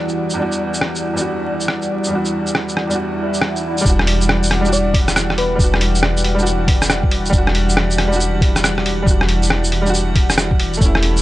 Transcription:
0.00 0.34 E2 medium
0.00 3.84 E3 medium
0.00 0.37 G3 medium
0.00 11.22 G3 medium
0.00 0.39 D4 medium
0.00 10.81 E4 medium
0.00 0.42 F#4 medium
0.00 10.81 D5 medium
0.00 11.22 F#5 medium
0.09 shaker soft
0.30 1.12 E2 medium
0.30 shaker medium
0.37 1.13 G3 medium
0.37 1.14 D4 medium
0.42 1.16 F#4 medium
0.52 shaker soft
0.74 shaker medium
0.81 cross-stick loud
0.95 shaker soft
1.13 2.05 E2 medium
1.13 2.08 G3 medium
1.13 shaker medium
1.19 2.11 D4 medium
1.19 2.12 F#4 medium
1.60 shaker soft
1.68 cross-stick loud
1.82 shaker soft
2.04 2.85 E2 medium
2.04 shaker medium
2.10 2.87 G3 medium
2.10 2.88 D4 medium
2.15 2.89 F#4 medium
2.25 shaker soft
2.47 shaker soft
2.55 cross-stick loud
2.69 shaker soft
2.77 cross-stick medium
2.87 3.82 E2 medium
2.87 3.80 G3 medium
2.87 shaker soft
2.92 3.84 D4 medium
2.92 3.86 F#4 medium
2.98 swell medium
3.34 shaker soft
3.42 cross-stick loud
3.56 shaker soft
3.77 4.59 G3 loud
3.77 shaker soft
3.85 5.58 E1 medium
3.85 11.22 E3 medium
3.85 4.61 D4 medium
3.85 11.22 G4 medium
3.85 11.22 F#5 medium
3.85 kick loud
3.85 shaker medium
3.89 4.63 F#4 loud
3.99 cross-stick medium
4.07 open hi-hat medium
4.21 shaker medium
4.29 cross-stick loud
4.43 shaker medium
4.51 cross-stick medium
4.51 open hi-hat medium
4.61 5.54 G3 medium
4.65 5.58 D4 medium
4.65 5.60 F#4 loud
4.65 shaker soft
4.73 4.96 D5 medium
4.73 shaker medium
4.94 kick loud
4.94 open hi-hat medium
5.08 cross-stick medium
5.08 shaker medium
5.16 cross-stick loud
5.16 shaker medium
5.30 cross-stick medium
5.38 6.00 B4 medium
5.38 open hi-hat medium
5.56 7.32 E1 medium
5.56 6.33 G3 medium
5.56 6.35 D4 medium
5.56 kick loud
5.60 6.37 F#4 loud
5.60 shaker medium
5.74 cross-stick medium
5.81 open hi-hat medium
5.95 shaker medium
6.03 cross-stick loud
6.17 shaker medium
6.24 open hi-hat medium
6.35 7.28 G3 medium
6.39 7.32 D4 medium
6.39 shaker soft
6.43 7.34 F#4 loud
6.43 shaker medium
6.68 kick loud
6.68 open hi-hat medium
6.82 cross-stick medium
6.82 shaker medium
6.90 cross-stick loud
6.90 shaker medium
7.03 kick loud
7.11 open hi-hat medium
7.26 shaker soft
7.30 9.05 E1 medium
7.30 8.06 G3 loud
7.30 kick loud
7.30 shaker medium
7.34 8.09 D4 medium
7.38 8.11 F#4 loud
7.47 cross-stick medium
7.55 open hi-hat medium
7.69 shaker medium
7.77 cross-stick loud
7.91 shaker medium
7.98 cross-stick medium
7.98 open hi-hat medium
8.08 9.01 G3 medium
8.08 9.05 D4 medium
8.12 9.07 F#4 loud
8.12 shaker soft
8.20 shaker medium
8.41 kick loud
8.41 open hi-hat medium
8.56 cross-stick medium
8.56 shaker medium
8.64 cross-stick loud
8.64 shaker medium
8.78 cross-stick medium
8.86 open hi-hat medium
9.02 9.80 G3 medium
9.06 10.79 E1 medium
9.06 9.83 D4 medium
9.06 kick loud
9.06 shaker medium
9.11 9.85 F#4 medium
9.21 cross-stick medium
9.29 open hi-hat medium
9.43 shaker medium
9.50 cross-stick loud
9.64 shaker medium
9.72 open hi-hat medium
9.82 10.77 G3 medium
9.86 10.79 D4 medium
9.86 10.81 F#4 loud
9.86 shaker soft
9.94 shaker medium
10.16 kick loud
10.16 open hi-hat medium
10.30 cross-stick medium
10.30 shaker medium
10.38 cross-stick loud
10.38 shaker medium
10.51 kick loud
10.60 open hi-hat medium
10.74 11.22 A3 medium
10.74 shaker soft
10.81 11.22 E1 medium
10.81 11.22 C#4 medium
10.81 kick loud
10.81 shaker medium
10.86 11.22 E4 loud
10.95 cross-stick medium
11.02 11.22 E4 medium
11.02 open hi-hat medium
11.17 shaker medium

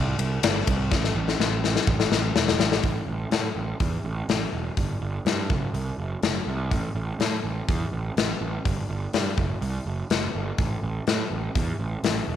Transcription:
0.00 0.14 C2 loud
0.19 0.38 C2 loud
0.19 ride medium
0.43 0.62 G1 medium
0.43 snare loud
0.43 ride loud
0.67 0.92 C2 medium
0.67 kick medium
0.67 ride medium
0.92 1.10 A1 medium
0.92 kick loud
0.92 snare medium
1.04 snare soft
1.15 1.34 A1 loud
1.28 snare medium
1.39 1.77 A1 medium
1.39 snare medium
1.64 snare medium
1.76 snare medium
1.87 2.06 A1 loud
1.87 kick loud
2.00 snare medium
2.12 2.30 A1 loud
2.12 snare medium
2.35 2.54 E1 medium
2.35 snare loud
2.48 snare medium
2.59 2.78 A1 medium
2.59 snare loud
2.72 snare medium
2.83 3.00 A1 medium
2.83 kick medium
2.83 open hi-hat soft
3.08 3.24 A1 medium
3.31 3.48 A2 medium
3.31 snare medium
3.31 open hi-hat soft
3.56 3.72 A1 medium
3.80 3.96 E2 medium
3.80 kick medium
3.80 open hi-hat soft
4.04 4.21 A1 medium
4.28 4.45 A1 medium
4.28 snare loud
4.28 open hi-hat soft
4.53 4.69 E1 medium
4.77 4.94 G1 medium
4.77 kick medium
4.77 open hi-hat soft
5.01 5.17 G1 medium
5.25 5.51 G2 medium
5.25 snare medium
5.25 open hi-hat soft
5.50 5.66 F#1 medium
5.50 kick loud
5.73 5.90 C2 medium
5.73 open hi-hat soft
5.98 6.14 F#1 medium
6.23 6.39 F#1 medium
6.23 snare loud
6.23 open hi-hat soft
6.47 6.72 C2 medium
6.71 6.88 A1 medium
6.71 kick medium
6.71 open hi-hat soft
6.95 7.11 A1 medium
7.19 7.35 A2 medium
7.19 snare medium
7.19 open hi-hat soft
7.44 7.60 A1 medium
7.68 7.84 E2 medium
7.68 kick loud
7.68 open hi-hat soft
7.92 8.09 A1 medium
8.17 8.33 A1 medium
8.17 snare loud
8.17 open hi-hat medium
8.41 8.57 A1 medium
8.65 8.81 G1 medium
8.65 kick medium
8.65 open hi-hat soft
8.89 9.05 G1 medium
9.13 9.30 G2 medium
9.13 snare medium
9.13 open hi-hat soft
9.37 9.54 F#1 medium
9.37 kick medium
9.61 9.78 C2 medium
9.61 open hi-hat soft
9.86 10.02 F#1 medium
10.10 10.26 F#1 medium
10.10 snare loud
10.10 open hi-hat soft
10.35 10.51 G1 medium
10.58 10.75 A1 medium
10.58 kick loud
10.58 open hi-hat soft
10.83 10.99 A1 medium
11.07 11.23 A2 medium
11.07 snare loud
11.07 open hi-hat soft
11.31 11.47 A1 medium
11.55 11.71 E2 medium
11.55 kick loud
11.55 open hi-hat soft
11.79 11.95 A1 medium
12.03 12.20 A1 medium
12.03 snare loud
12.03 open hi-hat medium
12.27 12.36 E1 medium

